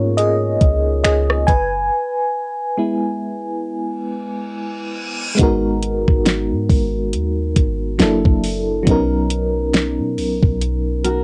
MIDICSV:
0, 0, Header, 1, 6, 480
1, 0, Start_track
1, 0, Key_signature, 5, "minor"
1, 0, Tempo, 869565
1, 1058, Time_signature, 4, 2, 24, 8
1, 6204, End_track
2, 0, Start_track
2, 0, Title_t, "Nylon-string guitar"
2, 0, Program_c, 0, 24
2, 6096, Note_on_c, 0, 70, 82
2, 6098, Note_on_c, 0, 66, 65
2, 6204, Note_off_c, 0, 66, 0
2, 6204, Note_off_c, 0, 70, 0
2, 6204, End_track
3, 0, Start_track
3, 0, Title_t, "FM electric piano"
3, 0, Program_c, 1, 5
3, 0, Control_c, 1, 64, 127
3, 0, Note_on_c, 1, 58, 54
3, 0, Note_on_c, 1, 59, 52
3, 0, Note_on_c, 1, 61, 62
3, 0, Note_on_c, 1, 63, 52
3, 0, Note_on_c, 1, 65, 74
3, 0, Note_on_c, 1, 70, 83
3, 0, Note_on_c, 1, 73, 87
3, 79, Note_off_c, 1, 65, 0
3, 95, Note_on_c, 1, 75, 104
3, 104, Note_on_c, 1, 68, 75
3, 111, Note_off_c, 1, 73, 0
3, 559, Note_off_c, 1, 68, 0
3, 566, Note_off_c, 1, 75, 0
3, 572, Note_on_c, 1, 75, 97
3, 584, Note_on_c, 1, 68, 76
3, 796, Note_off_c, 1, 58, 0
3, 797, Note_off_c, 1, 59, 0
3, 797, Note_off_c, 1, 63, 0
3, 804, Note_off_c, 1, 68, 0
3, 810, Note_on_c, 1, 80, 106
3, 822, Note_off_c, 1, 75, 0
3, 823, Note_on_c, 1, 71, 77
3, 825, Control_c, 1, 64, 0
3, 830, Note_off_c, 1, 61, 0
3, 830, Note_off_c, 1, 70, 0
3, 923, Control_c, 1, 64, 127
3, 1532, Note_on_c, 1, 56, 60
3, 1537, Note_on_c, 1, 59, 53
3, 1540, Note_on_c, 1, 64, 64
3, 2233, Note_off_c, 1, 56, 0
3, 2235, Note_off_c, 1, 59, 0
3, 2237, Note_off_c, 1, 64, 0
3, 2472, Note_off_c, 1, 80, 0
3, 2478, Note_off_c, 1, 71, 0
3, 2954, Note_on_c, 1, 56, 87
3, 2965, Note_on_c, 1, 59, 76
3, 2975, Note_on_c, 1, 63, 77
3, 2985, Control_c, 1, 64, 0
3, 2988, Note_on_c, 1, 66, 76
3, 2998, Note_on_c, 1, 70, 93
3, 3086, Control_c, 1, 64, 127
3, 4383, Note_off_c, 1, 56, 0
3, 4389, Note_off_c, 1, 59, 0
3, 4394, Note_off_c, 1, 63, 0
3, 4400, Note_off_c, 1, 66, 0
3, 4406, Note_off_c, 1, 70, 0
3, 4407, Note_on_c, 1, 54, 79
3, 4412, Note_on_c, 1, 58, 77
3, 4418, Note_on_c, 1, 62, 71
3, 4424, Control_c, 1, 64, 0
3, 4424, Note_on_c, 1, 64, 77
3, 4429, Note_on_c, 1, 69, 89
3, 4507, Control_c, 1, 64, 127
3, 4868, Note_off_c, 1, 54, 0
3, 4874, Note_on_c, 1, 54, 85
3, 4886, Note_on_c, 1, 59, 75
3, 4895, Note_off_c, 1, 58, 0
3, 4898, Note_off_c, 1, 62, 0
3, 4898, Note_on_c, 1, 61, 76
3, 4901, Note_off_c, 1, 64, 0
3, 4903, Note_off_c, 1, 69, 0
3, 4903, Control_c, 1, 64, 0
3, 4908, Note_on_c, 1, 63, 76
3, 4920, Note_on_c, 1, 70, 93
3, 4998, Control_c, 1, 64, 127
3, 6204, Note_off_c, 1, 54, 0
3, 6204, Note_off_c, 1, 59, 0
3, 6204, Note_off_c, 1, 61, 0
3, 6204, Note_off_c, 1, 63, 0
3, 6204, Note_off_c, 1, 70, 0
3, 6204, End_track
4, 0, Start_track
4, 0, Title_t, "808-style bass"
4, 0, Program_c, 2, 38
4, 0, Note_on_c, 2, 44, 99
4, 318, Note_off_c, 2, 44, 0
4, 337, Note_on_c, 2, 37, 98
4, 568, Note_off_c, 2, 37, 0
4, 578, Note_on_c, 2, 37, 102
4, 808, Note_off_c, 2, 37, 0
4, 816, Note_on_c, 2, 30, 95
4, 1047, Note_off_c, 2, 30, 0
4, 2977, Note_on_c, 2, 32, 119
4, 3341, Note_off_c, 2, 32, 0
4, 3356, Note_on_c, 2, 32, 109
4, 3597, Note_on_c, 2, 44, 96
4, 3605, Note_off_c, 2, 32, 0
4, 3693, Note_off_c, 2, 44, 0
4, 3696, Note_on_c, 2, 32, 105
4, 3938, Note_on_c, 2, 39, 97
4, 3947, Note_off_c, 2, 32, 0
4, 4166, Note_off_c, 2, 39, 0
4, 4175, Note_on_c, 2, 32, 97
4, 4407, Note_off_c, 2, 32, 0
4, 4416, Note_on_c, 2, 30, 105
4, 4550, Note_off_c, 2, 30, 0
4, 4555, Note_on_c, 2, 30, 110
4, 4883, Note_off_c, 2, 30, 0
4, 4897, Note_on_c, 2, 35, 105
4, 5514, Note_on_c, 2, 47, 99
4, 5523, Note_off_c, 2, 35, 0
4, 5615, Note_on_c, 2, 35, 95
4, 5623, Note_off_c, 2, 47, 0
4, 5748, Note_off_c, 2, 35, 0
4, 5755, Note_on_c, 2, 35, 102
4, 6204, Note_off_c, 2, 35, 0
4, 6204, End_track
5, 0, Start_track
5, 0, Title_t, "Reverse cymbal"
5, 0, Program_c, 3, 119
5, 2017, Note_on_c, 3, 60, 83
5, 2977, Note_off_c, 3, 60, 0
5, 6204, End_track
6, 0, Start_track
6, 0, Title_t, "Drums"
6, 99, Note_on_c, 9, 42, 70
6, 154, Note_off_c, 9, 42, 0
6, 337, Note_on_c, 9, 36, 89
6, 337, Note_on_c, 9, 42, 66
6, 392, Note_off_c, 9, 36, 0
6, 392, Note_off_c, 9, 42, 0
6, 576, Note_on_c, 9, 26, 112
6, 577, Note_on_c, 9, 42, 67
6, 632, Note_off_c, 9, 26, 0
6, 632, Note_off_c, 9, 42, 0
6, 717, Note_on_c, 9, 37, 108
6, 772, Note_off_c, 9, 37, 0
6, 817, Note_on_c, 9, 36, 106
6, 818, Note_on_c, 9, 42, 62
6, 872, Note_off_c, 9, 36, 0
6, 873, Note_off_c, 9, 42, 0
6, 2978, Note_on_c, 9, 36, 113
6, 2978, Note_on_c, 9, 42, 83
6, 3033, Note_off_c, 9, 36, 0
6, 3033, Note_off_c, 9, 42, 0
6, 3216, Note_on_c, 9, 42, 79
6, 3271, Note_off_c, 9, 42, 0
6, 3356, Note_on_c, 9, 36, 95
6, 3411, Note_off_c, 9, 36, 0
6, 3455, Note_on_c, 9, 42, 77
6, 3457, Note_on_c, 9, 38, 108
6, 3511, Note_off_c, 9, 42, 0
6, 3512, Note_off_c, 9, 38, 0
6, 3696, Note_on_c, 9, 36, 98
6, 3698, Note_on_c, 9, 46, 46
6, 3751, Note_off_c, 9, 36, 0
6, 3753, Note_off_c, 9, 46, 0
6, 3937, Note_on_c, 9, 42, 74
6, 3992, Note_off_c, 9, 42, 0
6, 4174, Note_on_c, 9, 42, 72
6, 4175, Note_on_c, 9, 36, 98
6, 4229, Note_off_c, 9, 42, 0
6, 4230, Note_off_c, 9, 36, 0
6, 4414, Note_on_c, 9, 38, 114
6, 4414, Note_on_c, 9, 42, 69
6, 4469, Note_off_c, 9, 38, 0
6, 4469, Note_off_c, 9, 42, 0
6, 4555, Note_on_c, 9, 36, 105
6, 4610, Note_off_c, 9, 36, 0
6, 4657, Note_on_c, 9, 46, 72
6, 4712, Note_off_c, 9, 46, 0
6, 4895, Note_on_c, 9, 42, 81
6, 4896, Note_on_c, 9, 36, 122
6, 4951, Note_off_c, 9, 36, 0
6, 4951, Note_off_c, 9, 42, 0
6, 5135, Note_on_c, 9, 42, 79
6, 5190, Note_off_c, 9, 42, 0
6, 5376, Note_on_c, 9, 42, 72
6, 5377, Note_on_c, 9, 38, 113
6, 5431, Note_off_c, 9, 42, 0
6, 5433, Note_off_c, 9, 38, 0
6, 5620, Note_on_c, 9, 46, 46
6, 5675, Note_off_c, 9, 46, 0
6, 5755, Note_on_c, 9, 36, 96
6, 5810, Note_off_c, 9, 36, 0
6, 5859, Note_on_c, 9, 42, 69
6, 5914, Note_off_c, 9, 42, 0
6, 6097, Note_on_c, 9, 42, 76
6, 6152, Note_off_c, 9, 42, 0
6, 6204, End_track
0, 0, End_of_file